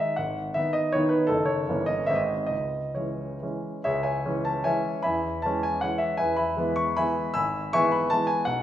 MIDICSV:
0, 0, Header, 1, 2, 480
1, 0, Start_track
1, 0, Key_signature, 4, "minor"
1, 0, Tempo, 376648
1, 241, Time_signature, 3, 2, 24, 8
1, 2160, Tempo, 412371
1, 3120, Tempo, 454890
1, 4080, Tempo, 412371
1, 5520, Tempo, 387097
1, 8400, Tempo, 367647
1, 10540, End_track
2, 0, Start_track
2, 0, Title_t, "Grand piano"
2, 0, Program_c, 0, 0
2, 0, Note_on_c, 0, 51, 46
2, 0, Note_on_c, 0, 56, 47
2, 0, Note_on_c, 0, 63, 49
2, 0, Note_on_c, 0, 76, 76
2, 192, Note_off_c, 0, 51, 0
2, 193, Note_off_c, 0, 56, 0
2, 194, Note_off_c, 0, 63, 0
2, 209, Note_on_c, 0, 78, 76
2, 225, Note_off_c, 0, 76, 0
2, 233, Note_on_c, 0, 32, 53
2, 456, Control_c, 0, 64, 127
2, 692, Note_on_c, 0, 76, 84
2, 708, Note_off_c, 0, 32, 0
2, 711, Note_off_c, 0, 78, 0
2, 712, Note_on_c, 0, 51, 44
2, 721, Note_on_c, 0, 59, 44
2, 724, Note_on_c, 0, 63, 53
2, 742, Control_c, 0, 64, 0
2, 931, Note_on_c, 0, 75, 86
2, 953, Note_off_c, 0, 76, 0
2, 1149, Note_off_c, 0, 51, 0
2, 1154, Note_off_c, 0, 59, 0
2, 1156, Note_off_c, 0, 63, 0
2, 1179, Note_on_c, 0, 73, 86
2, 1185, Note_off_c, 0, 75, 0
2, 1205, Note_on_c, 0, 51, 56
2, 1207, Note_on_c, 0, 63, 58
2, 1208, Note_on_c, 0, 59, 53
2, 1388, Note_on_c, 0, 71, 78
2, 1421, Note_off_c, 0, 73, 0
2, 1616, Note_on_c, 0, 69, 88
2, 1617, Note_off_c, 0, 51, 0
2, 1619, Note_off_c, 0, 59, 0
2, 1619, Note_off_c, 0, 63, 0
2, 1640, Note_off_c, 0, 71, 0
2, 1640, Note_on_c, 0, 30, 60
2, 1646, Note_on_c, 0, 51, 43
2, 1655, Note_on_c, 0, 57, 44
2, 1667, Note_on_c, 0, 63, 44
2, 1854, Note_on_c, 0, 73, 77
2, 1880, Note_off_c, 0, 69, 0
2, 1909, Control_c, 0, 64, 127
2, 2101, Note_off_c, 0, 51, 0
2, 2106, Note_off_c, 0, 57, 0
2, 2112, Note_off_c, 0, 63, 0
2, 2133, Note_off_c, 0, 30, 0
2, 2146, Note_on_c, 0, 52, 47
2, 2154, Note_on_c, 0, 31, 64
2, 2156, Note_on_c, 0, 58, 48
2, 2169, Note_on_c, 0, 61, 49
2, 2170, Control_c, 0, 64, 0
2, 2355, Note_on_c, 0, 75, 86
2, 2379, Note_off_c, 0, 73, 0
2, 2380, Control_c, 0, 64, 127
2, 2587, Note_off_c, 0, 52, 0
2, 2590, Note_on_c, 0, 76, 84
2, 2591, Note_off_c, 0, 58, 0
2, 2597, Note_off_c, 0, 61, 0
2, 2615, Note_on_c, 0, 51, 43
2, 2617, Note_off_c, 0, 75, 0
2, 2618, Note_on_c, 0, 32, 60
2, 2622, Note_on_c, 0, 56, 41
2, 2623, Note_off_c, 0, 31, 0
2, 2628, Note_on_c, 0, 60, 41
2, 2655, Control_c, 0, 64, 0
2, 2693, Note_on_c, 0, 75, 72
2, 2734, Note_off_c, 0, 76, 0
2, 2869, Control_c, 0, 64, 127
2, 3039, Note_off_c, 0, 75, 0
2, 3056, Note_on_c, 0, 75, 74
2, 3061, Note_off_c, 0, 51, 0
2, 3065, Note_off_c, 0, 56, 0
2, 3068, Note_off_c, 0, 60, 0
2, 3087, Note_on_c, 0, 37, 45
2, 3095, Note_off_c, 0, 32, 0
2, 3137, Control_c, 0, 64, 0
2, 3390, Control_c, 0, 64, 127
2, 3570, Note_on_c, 0, 73, 48
2, 3571, Note_off_c, 0, 37, 0
2, 3572, Note_off_c, 0, 75, 0
2, 3585, Note_on_c, 0, 52, 37
2, 3593, Note_on_c, 0, 56, 36
2, 3598, Note_on_c, 0, 61, 38
2, 4031, Note_off_c, 0, 52, 0
2, 4035, Note_off_c, 0, 56, 0
2, 4037, Note_off_c, 0, 61, 0
2, 4065, Note_off_c, 0, 73, 0
2, 4073, Note_on_c, 0, 52, 38
2, 4081, Note_on_c, 0, 56, 40
2, 4089, Note_on_c, 0, 61, 41
2, 4090, Control_c, 0, 64, 0
2, 4523, Note_off_c, 0, 52, 0
2, 4527, Note_off_c, 0, 56, 0
2, 4531, Note_off_c, 0, 61, 0
2, 4559, Note_on_c, 0, 76, 78
2, 4567, Note_on_c, 0, 73, 60
2, 4569, Note_on_c, 0, 68, 57
2, 4586, Note_on_c, 0, 37, 53
2, 4773, Note_off_c, 0, 76, 0
2, 4774, Note_off_c, 0, 73, 0
2, 4781, Note_on_c, 0, 80, 69
2, 4789, Note_off_c, 0, 68, 0
2, 4791, Note_on_c, 0, 73, 55
2, 4791, Note_on_c, 0, 76, 55
2, 4832, Control_c, 0, 64, 127
2, 5041, Note_off_c, 0, 37, 0
2, 5042, Note_on_c, 0, 56, 55
2, 5044, Note_on_c, 0, 61, 57
2, 5045, Note_on_c, 0, 52, 49
2, 5246, Note_off_c, 0, 73, 0
2, 5246, Note_off_c, 0, 76, 0
2, 5264, Note_on_c, 0, 81, 77
2, 5275, Note_off_c, 0, 80, 0
2, 5470, Note_off_c, 0, 56, 0
2, 5471, Note_off_c, 0, 52, 0
2, 5471, Note_off_c, 0, 61, 0
2, 5489, Note_on_c, 0, 80, 78
2, 5500, Note_on_c, 0, 73, 58
2, 5502, Note_on_c, 0, 76, 62
2, 5508, Note_off_c, 0, 81, 0
2, 5514, Note_on_c, 0, 52, 47
2, 5523, Note_on_c, 0, 56, 47
2, 5525, Note_on_c, 0, 61, 48
2, 5539, Control_c, 0, 64, 0
2, 5941, Note_off_c, 0, 52, 0
2, 5946, Note_off_c, 0, 56, 0
2, 5947, Note_off_c, 0, 61, 0
2, 5947, Note_off_c, 0, 73, 0
2, 5948, Note_off_c, 0, 76, 0
2, 5960, Note_off_c, 0, 80, 0
2, 5965, Note_on_c, 0, 83, 83
2, 5978, Note_on_c, 0, 80, 65
2, 5980, Note_on_c, 0, 76, 64
2, 5994, Note_on_c, 0, 40, 55
2, 6229, Control_c, 0, 64, 127
2, 6439, Note_off_c, 0, 80, 0
2, 6440, Note_off_c, 0, 76, 0
2, 6457, Note_on_c, 0, 81, 77
2, 6467, Note_off_c, 0, 40, 0
2, 6467, Note_off_c, 0, 83, 0
2, 6497, Note_on_c, 0, 56, 56
2, 6499, Note_on_c, 0, 52, 54
2, 6506, Note_on_c, 0, 61, 59
2, 6717, Note_on_c, 0, 80, 76
2, 6719, Note_off_c, 0, 81, 0
2, 6926, Note_off_c, 0, 56, 0
2, 6927, Note_off_c, 0, 52, 0
2, 6931, Note_off_c, 0, 61, 0
2, 6939, Note_on_c, 0, 78, 80
2, 6959, Note_off_c, 0, 80, 0
2, 6967, Note_on_c, 0, 52, 45
2, 6969, Note_on_c, 0, 61, 50
2, 6971, Note_on_c, 0, 56, 46
2, 6981, Control_c, 0, 64, 0
2, 7151, Note_on_c, 0, 76, 76
2, 7182, Note_off_c, 0, 78, 0
2, 7378, Note_off_c, 0, 52, 0
2, 7379, Note_off_c, 0, 61, 0
2, 7380, Note_off_c, 0, 56, 0
2, 7385, Note_off_c, 0, 76, 0
2, 7389, Note_on_c, 0, 80, 80
2, 7404, Note_on_c, 0, 76, 60
2, 7409, Note_on_c, 0, 71, 64
2, 7418, Note_on_c, 0, 40, 53
2, 7614, Note_off_c, 0, 80, 0
2, 7621, Note_off_c, 0, 76, 0
2, 7626, Note_on_c, 0, 83, 78
2, 7631, Note_off_c, 0, 71, 0
2, 7633, Note_on_c, 0, 80, 58
2, 7639, Note_on_c, 0, 76, 60
2, 7651, Control_c, 0, 64, 127
2, 7881, Note_on_c, 0, 56, 57
2, 7883, Note_on_c, 0, 52, 55
2, 7885, Note_off_c, 0, 40, 0
2, 7892, Note_on_c, 0, 59, 56
2, 8110, Note_off_c, 0, 80, 0
2, 8114, Note_off_c, 0, 76, 0
2, 8114, Note_on_c, 0, 85, 82
2, 8143, Note_off_c, 0, 83, 0
2, 8340, Note_off_c, 0, 56, 0
2, 8341, Note_off_c, 0, 52, 0
2, 8346, Note_off_c, 0, 59, 0
2, 8370, Note_on_c, 0, 83, 89
2, 8378, Note_off_c, 0, 85, 0
2, 8378, Note_on_c, 0, 80, 66
2, 8382, Note_on_c, 0, 76, 66
2, 8398, Note_on_c, 0, 52, 46
2, 8404, Note_on_c, 0, 56, 45
2, 8411, Control_c, 0, 64, 0
2, 8412, Note_on_c, 0, 59, 52
2, 8837, Note_off_c, 0, 52, 0
2, 8840, Note_off_c, 0, 56, 0
2, 8840, Note_off_c, 0, 80, 0
2, 8842, Note_off_c, 0, 76, 0
2, 8844, Note_off_c, 0, 59, 0
2, 8848, Note_off_c, 0, 83, 0
2, 8853, Note_on_c, 0, 88, 89
2, 8865, Note_on_c, 0, 80, 64
2, 8868, Note_on_c, 0, 83, 70
2, 8880, Note_on_c, 0, 32, 57
2, 9125, Control_c, 0, 64, 127
2, 9340, Note_off_c, 0, 80, 0
2, 9342, Note_off_c, 0, 83, 0
2, 9369, Note_off_c, 0, 32, 0
2, 9370, Note_off_c, 0, 88, 0
2, 9370, Note_on_c, 0, 85, 103
2, 9373, Note_on_c, 0, 76, 82
2, 9379, Note_on_c, 0, 80, 76
2, 9385, Note_on_c, 0, 52, 59
2, 9397, Note_on_c, 0, 59, 63
2, 9398, Note_on_c, 0, 56, 58
2, 9609, Note_off_c, 0, 76, 0
2, 9611, Note_on_c, 0, 83, 73
2, 9612, Note_off_c, 0, 80, 0
2, 9625, Note_off_c, 0, 85, 0
2, 9818, Note_off_c, 0, 52, 0
2, 9825, Note_off_c, 0, 56, 0
2, 9825, Note_off_c, 0, 59, 0
2, 9849, Note_on_c, 0, 81, 98
2, 9856, Note_off_c, 0, 83, 0
2, 9877, Note_on_c, 0, 52, 52
2, 9882, Control_c, 0, 64, 0
2, 9882, Note_on_c, 0, 56, 52
2, 9890, Note_on_c, 0, 59, 55
2, 10070, Note_on_c, 0, 80, 85
2, 10088, Note_off_c, 0, 81, 0
2, 10285, Note_off_c, 0, 52, 0
2, 10288, Note_off_c, 0, 56, 0
2, 10292, Note_off_c, 0, 59, 0
2, 10309, Note_on_c, 0, 78, 90
2, 10313, Note_off_c, 0, 80, 0
2, 10334, Note_on_c, 0, 35, 59
2, 10540, Note_off_c, 0, 35, 0
2, 10540, Note_off_c, 0, 78, 0
2, 10540, End_track
0, 0, End_of_file